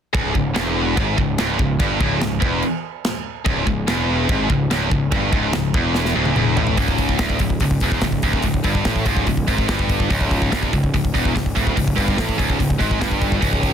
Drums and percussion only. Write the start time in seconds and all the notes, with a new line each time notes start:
0.15 kick, china
0.35 kick
0.56 snare, china
0.97 kick, china
1.18 kick
1.38 snare, china
1.59 kick
1.80 kick, china
2.01 kick
2.21 snare, china
2.42 kick
2.63 china
3.05 snare, china
3.46 kick, china
3.67 kick
3.88 snare, china
4.29 kick, china
4.50 kick
4.71 snare, china
4.91 kick
5.12 kick, china
5.33 kick
5.53 snare, china
5.74 kick
5.95 snare
6.05 snare
6.25 high tom
6.36 mid tom
6.57 floor tom
6.67 floor tom
6.77 kick, open hi-hat
6.88 kick
6.98 kick, open hi-hat
7.09 kick
7.19 kick, snare, open hi-hat
7.30 kick
7.39 kick, open hi-hat
7.50 kick
7.60 kick, open hi-hat
7.71 kick
7.80 kick, open hi-hat
7.92 kick
8.01 kick, snare, open hi-hat
8.12 kick
8.22 kick, open hi-hat
8.33 kick
8.42 kick, open hi-hat
8.54 kick
8.64 kick, open hi-hat
8.75 kick
8.85 kick, snare, open hi-hat
8.96 kick
9.06 kick, open hi-hat
9.17 kick
9.27 kick, open hi-hat
9.37 kick
9.48 kick, open hi-hat
9.58 kick
9.68 kick, snare, open hi-hat
9.79 kick
9.89 kick, open hi-hat
10.00 kick
10.10 kick, open hi-hat
10.21 kick
10.31 kick, open hi-hat
10.42 kick
10.52 kick, snare, open hi-hat
10.63 kick
10.73 kick, open hi-hat
10.84 kick
10.94 kick, open hi-hat
11.05 kick
11.15 kick, open hi-hat
11.25 kick
11.36 kick, snare, open hi-hat
11.46 kick
11.57 kick, open hi-hat
11.67 kick
11.77 kick, open hi-hat
11.88 kick
11.98 kick, open hi-hat
12.08 kick
12.18 kick, snare, open hi-hat
12.29 kick
12.39 kick, open hi-hat
12.50 kick
12.60 kick, open hi-hat
12.70 kick
12.81 kick, open hi-hat
12.91 kick
13.01 kick, snare, open hi-hat
13.11 kick
13.21 kick, open hi-hat
13.32 kick
13.42 kick, open hi-hat
13.53 kick
13.63 kick, open hi-hat